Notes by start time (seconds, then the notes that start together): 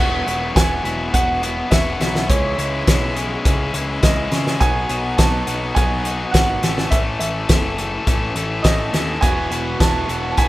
Already playing: E1 E2 B2 F#3 F#5
0.00 B3 E4 F#4
0.26 E1 E2 B2 F#3 B3 E4 F#4, closed hi-hat
0.55 E1 E2 B2 F#3 B3 E4 F#4 G#5, kick, snare, closed hi-hat
0.83 E1 E2 B2 F#3 B3 E4 F#4, closed hi-hat
1.12 E1 E2 B2 F#3 B3 E4 F#4 F#5, kick, closed hi-hat
1.42 E2 B2 F#3 B3 E4 F#4, closed hi-hat
1.71 E1 E2 B2 F#3 B3 E4 F#4 E5, kick, snare, closed hi-hat
2.00 B1 E2 B2 F#3 B3 E4 F#4, snare, closed hi-hat
2.15 snare
2.29 C#2 C#3 E3 G#3 C#4 E4 C#5, kick, closed hi-hat
2.57 C#2 C#3 E3 G#3 C#4 E4 C#5, closed hi-hat
2.87 B1 C#3 E3 G#3 C#4 E4, kick, snare, closed hi-hat
3.15 C#3 E3 G#3 C#4 E4, closed hi-hat
3.44 C#2 C#3 E3 G#3 C#4 E4, kick, closed hi-hat
3.74 C#2 C#3 E3 G#3 C#4 E4, closed hi-hat
4.02 C#2 C#3 E3 G#3 C#4 E4 D#5, kick, snare, closed hi-hat
4.31 C#3 E3 G#3 C#4 E4, snare, closed hi-hat
4.47 snare
4.60 B1 B2 F#3 B3 D#4 F#4 G#5, kick, closed hi-hat
4.89 B1 B2 F#3 B3 D#4 F#4, closed hi-hat
5.17 B1 B2 F#3 B3 D#4 F#4 A5, kick, snare, closed hi-hat
5.47 B1 B2 F#3 B3 D#4 F#4, closed hi-hat
5.75 B1 B2 F#3 B3 D#4 F#4 G#5, kick, closed hi-hat
6.04 B2 F#3 B3 D#4 F#4, closed hi-hat
6.31 G#1 B2 F#3 B3 D#4 F#4 F#5, kick, snare, closed hi-hat
6.62 A1 A2 E3 A3 C#4 A4, snare, closed hi-hat
6.78 snare
6.91 A1 A2 E3 A3 C#4 A4 E5, kick, closed hi-hat
7.19 A1 A2 E3 A3 C#4 A4 E5, closed hi-hat
7.49 F#1 A2 E3 A3 C#4 A4, kick, snare, closed hi-hat
7.77 A2 E3 A3 C#4 A4, closed hi-hat
8.06 A1 A2 E3 A3 C#4 A4, kick, closed hi-hat
8.35 A1 A2 E3 A3 C#4 A4, closed hi-hat
8.63 A1 A2 E3 A3 C#4 A4 D#5, kick, snare, closed hi-hat
8.93 D#2 A2 E3 A3 C#4 A4, snare, closed hi-hat
9.21 E1 E2 B2 E3 F#3 B3 E4 F#4 G#5, kick, closed hi-hat
9.50 E1 E2 B2 E3 F#3 B3 E4 F#4, closed hi-hat
9.79 E1 E2 B2 E3 F#3 B3 E4 F#4 A5, kick, snare, closed hi-hat
10.07 E1 E2 B2 E3 F#3 B3 E4 F#4, closed hi-hat
10.31 A5
10.36 E1 E2 B2 E3 F#3 B3 E4 F#4 G#5, kick, closed hi-hat